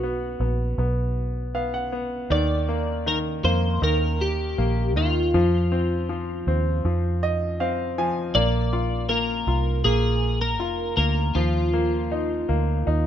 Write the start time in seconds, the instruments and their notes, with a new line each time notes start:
Already playing: fingered electric bass B1, grand piano B3, clean electric guitar F#4
0.03 grand piano B3
0.40 fingered electric bass A#1, grand piano B3
0.78 fingered electric bass B1, grand piano B3
1.55 grand piano B3 F5
1.74 grand piano F#5
1.92 grand piano B3
2.30 fingered electric bass D#2, grand piano D#3, clean electric guitar D5
2.69 grand piano A#3
3.06 grand piano D#3, clean electric guitar A#4
3.44 fingered electric bass F2, grand piano A#3, clean electric guitar C5
3.82 fingered electric bass D#2, grand piano D#3, clean electric guitar A#4
4.21 clean electric guitar G4
4.58 fingered electric bass A#1, grand piano A#3
4.96 fingered electric bass D#2, grand piano D#3, clean electric guitar F4
5.34 fingered electric bass F2, grand piano F3
5.72 grand piano C4
6.09 grand piano F3
6.47 fingered electric bass D#2, grand piano C4
6.85 fingered electric bass F2, grand piano F3
7.23 grand piano D#5
7.60 grand piano C4 F5
7.98 grand piano F3 G#5
8.35 fingered electric bass A#1, grand piano A#3, clean electric guitar D5
8.73 grand piano F4
9.09 grand piano A#3, clean electric guitar A#4
9.47 fingered electric bass C2, grand piano F4
9.84 fingered electric bass A#1, grand piano A#3, clean electric guitar G#4
10.41 clean electric guitar A#4
10.60 fingered electric bass F1, grand piano F4
10.97 fingered electric bass D2, grand piano A#3, clean electric guitar A#4
11.35 fingered electric bass D#2, grand piano F3, clean electric guitar F4
11.73 grand piano A#3
12.12 grand piano D#4
12.49 fingered electric bass D2, grand piano A#3
12.87 fingered electric bass D#2, grand piano D#4